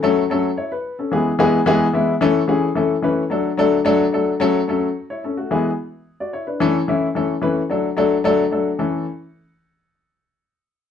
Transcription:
X:1
M:4/4
L:1/16
Q:1/4=110
K:A
V:1 name="Grand piano"
z4 [Ec] B2 [CA]2 z6 z | z16 | z4 z [Ec] [CA] [A,F]2 z4 [Fd] [Ec] [DB]- | [DB] z12 z3 |
z16 |]
V:2 name="Grand piano"
[F,A,CA]2 [F,A,CA]2 z4 [E,G,B,G]2 [E,G,B,G]2 [E,G,B,G]2 [E,G,B,E]2 | [E,A,CA]2 [E,A,CG]2 [E,A,CA]2 [E,A,CB]2 [F,A,DA]2 [F,A,DA]2 [F,A,DA]2 [F,A,DA]2 | [F,A,CA]2 [F,A,CA]2 z4 [E,G,B,G]2 z6 | [E,A,CA]2 [E,A,CE]2 [E,A,CA]2 [E,A,CB]2 [F,A,DA]2 [F,A,DA]2 [F,A,DA]2 [F,A,DA]2 |
[E,A,CA]2 z12 z2 |]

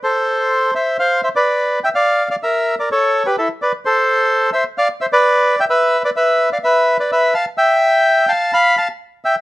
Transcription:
X:1
M:4/4
L:1/16
Q:1/4=127
K:Am
V:1 name="Bandoneon"
[Ac]6 [ce]2 [cf]2 [ce] [Bd]4 [eg] | [df]3 [df] [_Be]3 [Bd] [A^c]3 [G=B] [EA]2 [Bd]2 | [Ac]6 [ce]2 [df]2 [ce] [Bd]4 [eg] | [Be]3 [Bd] [Be]3 [df] [Be]3 [Bd] [Be]2 [fa]2 |
[eg]6 [fa]2 [fb]2 [fa]2 z2 [eg]2 |]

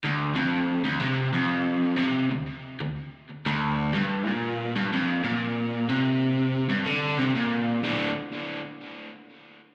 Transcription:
X:1
M:4/4
L:1/8
Q:"Swing" 1/4=123
K:G
V:1 name="Overdriven electric guitar" clef=bass
D,, =F,,2 D,, C, F,,3 | C, D,, z D,, z2 D,,2 | G,, _B,,2 G,, =F,, B,,3 | C,3 G,, D, C, _B,,2 |
[D,,A,,D,] z6 z |]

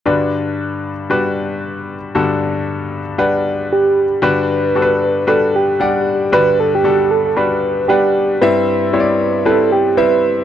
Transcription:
X:1
M:4/4
L:1/16
Q:"Swing 16ths" 1/4=115
K:G
V:1 name="Soft synth lead"
z16 | z12 G4 | B8 A2 G2 G4 | B2 A G3 A A B4 G4 |
B8 A2 G2 B4 |]
V:2 name="Grand piano"
[G,DFB]6 z2 [G,DFB]6 z2 | [G,DFA]6 z2 [G,DBf]6 z2 | [G,DFB]4 [G,DFAB]4 [G,DFB]4 [G,Ddf]4 | [G,DFB]4 [G,DFA]4 [G,DFB]4 [G,DBf]4 |
[G,CEe]4 [G,CE^cd]4 [G,=CEB]4 [G,CEe]4 |]
V:3 name="Grand piano" clef=bass
[G,,D,]16 | [G,,D,]16 | [G,,D,]6 z8 z2 | [G,,D,]6 z8 z2 |
G,,6 z8 z2 |]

